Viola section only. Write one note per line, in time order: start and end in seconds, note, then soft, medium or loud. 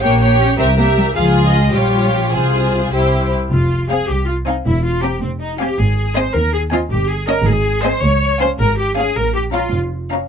0.02 0.19 G4 soft
0.20 0.57 G4 medium
0.58 0.76 G4 soft
0.77 1.15 G4 medium
1.16 1.69 F4 medium
1.73 2.31 F4 medium
2.33 2.91 F4 soft
2.93 3.31 E4 soft
3.90 4.04 C4 medium
4.47 4.61 C4 medium
5.03 5.18 C4 soft
5.60 5.74 C4 medium
6.16 6.30 C4 medium
6.73 6.87 C4 medium
7.29 7.43 C#4 medium
7.86 7.99 C4 medium
8.41 8.55 C#4 medium
8.97 9.11 C#4 medium
9.54 9.68 C#4 medium
10.11 10.26 C#4 medium